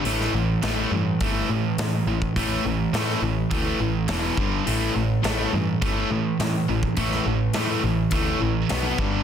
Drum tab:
HH |o---o---o---o---|o---o---o---o---|o---o---o---o---|o---o---o---o---|
SD |-o--o-------o---|----oo------o---|----o-------o---|-o--o-------o---|
BD |--------o------o|o-------o-----o-|--------o------o|o-------o-----o-|